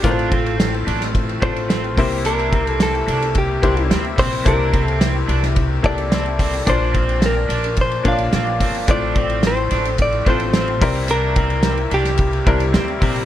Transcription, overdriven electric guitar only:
\new Staff \with { instrumentName = "Overdriven electric guitar" } { \time 4/4 \key c \mixolydian \tempo 4 = 109 d'8 c'8. r16 d'16 r8. d'16 r16 c'16 r16 c'16 r16 | d'8 c'8. r16 d'16 r8. d'16 r16 c'16 r16 c'16 r16 | d'8 c'8. r16 d'16 r8. d'16 r16 c'16 r16 c'16 r16 | d'8 c'8. r16 d'16 r8. d'16 r16 c'16 r16 c'16 r16 |
d'8 c'8. r16 d'16 r8. d'16 r16 c'16 r16 c'16 r16 | d'8 c'8. r16 d'16 r8. d'16 r16 c'16 r16 c'16 r16 | }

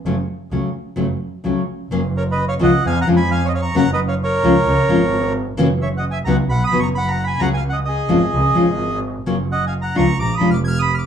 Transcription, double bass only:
\new Staff \with { instrumentName = "Double bass" } { \clef bass \time 4/4 \key fis \minor \tempo 4 = 131 fis,,8 r8 cis,8 r8 fis,,8 r8 cis,8 r8 | \key fis \major fis,,4. cis,8 eis,8 eis,4. | fis,,4. cis,8 cis,8 gis,,4. | fis,,4. cis,8 b,,8 fis,,4. |
cis,4. gis,,8 cis,8 gis,,4. | fis,,4. cis,8 ais,,8 eis,,4. | }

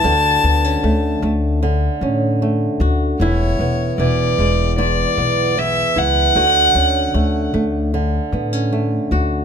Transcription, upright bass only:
\new Staff \with { instrumentName = "Upright bass" } { \clef bass \time 4/4 \key d \lydian \tempo 4 = 76 d,8 d,8 d,8 d,4 a,4 d,8 | e,,8 e,,8 e,,8 e,,4 b,,4 cis,8 | d,8 d,8 d,8 d,4 a,4 d,8 | }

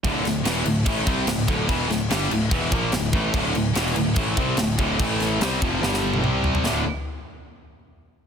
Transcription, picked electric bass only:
\new Staff \with { instrumentName = "Picked electric bass" } { \clef bass \time 4/4 \key d \minor \tempo 4 = 145 d,,8 d,,8 e,,8 d,,8 a,,8 c,8 d,,8 d,,8 | e,,8 d,,8 g,,8 d,,8 e,,8 bes,,8 d,,8 a,,8 | d,,8 d,,8 e,,8 d,,8 a,,8 c,8 d,,8 d,,8 | a,,4 c,8 f,,8 g,,4 c,4 |
d,,8 r2. r8 | }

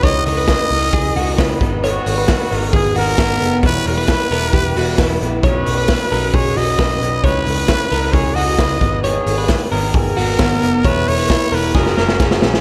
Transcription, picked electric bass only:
\new Staff \with { instrumentName = "Picked electric bass" } { \clef bass \time 4/4 \key gis \minor \tempo 4 = 133 cis,8 cis,8. r16 cis,8 cis,8 cis,8 cis,8 gis,,8~ | gis,,8 gis,,8. r16 gis,,8 gis,,8 gis,,8 gis,,8 fis,,8 | e,,8 e,,8. r16 e,,8 e,,8 e,,8 e,,8 ais,,8 | b,,8 b,,8. r16 b,,8 b,,8 b,,8 b,,8 b,,8 |
cis,8 cis,8. r16 cis,8 cis,8 cis,8 cis,8 gis,,8~ | gis,,8 gis,,8. r16 gis,,8 gis,,8 gis,,8 gis,,8 fis,,8 | e,,8 e,,8. r16 e,,8 fis,,8 fis,,8 fis,,8 ais,,8 | }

